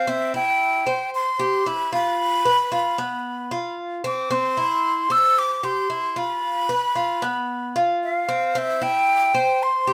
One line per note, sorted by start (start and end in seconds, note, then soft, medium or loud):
0.00 0.10 F5 medium
0.07 0.33 C4 medium
0.07 0.35 E5 loud
0.34 0.85 E4 medium
0.34 1.10 G5 loud
0.86 1.38 C5 medium
1.15 1.69 C6 loud
1.39 1.65 G4 medium
1.66 1.92 E4 medium
1.66 1.93 B5 loud
1.92 2.44 F4 medium
1.92 3.75 B5 loud
2.45 2.71 B4 medium
2.72 2.98 F4 medium
2.98 3.50 B3 medium
3.51 4.03 F4 medium
4.04 4.29 C4 medium
4.04 4.33 D6 medium
4.30 4.56 C4 loud
4.30 5.13 C6 loud
4.57 5.09 E4 medium
5.10 5.62 C5 medium
5.10 5.40 E6 loud
5.39 5.66 D6 loud
5.63 5.89 G4 medium
5.63 6.20 C6 medium
5.90 6.16 E4 medium
6.16 6.68 F4 medium
6.16 7.76 B5 medium
6.69 6.95 B4 medium
6.95 7.21 F4 medium
7.22 7.74 B3 loud
7.76 8.27 F4 medium
8.04 8.59 F5 medium
8.29 8.54 C4 medium
8.55 8.81 C4 medium
8.55 8.84 E5 loud
8.81 9.33 E4 medium
8.81 9.64 G5 loud
9.34 9.86 C5 medium
9.63 9.93 C6 loud
9.87 9.93 G4 medium